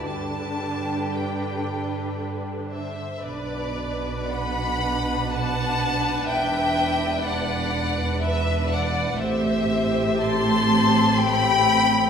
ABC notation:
X:1
M:3/4
L:1/8
Q:1/4=60
K:Bphr
V:1 name="Violin section"
a2 g2 z e | d2 b2 a2 | g2 f2 e f | e2 c'2 b2 |]
V:2 name="Violin section"
[GB]4- [GB] c | B2 f2 f2 | e2 d2 B d | c2 a2 g2 |]
V:3 name="Viola section"
[D,D]6 | [DB]6- | [DB]6 | [CG]6 |]
V:4 name="Cello section" clef=bass
D4- D z | B,,6 | E,,6 | A,,6 |]
V:5 name="Double bass section" clef=bass
G,,6 | B,,,6 | E,,,6 | A,,,6 |]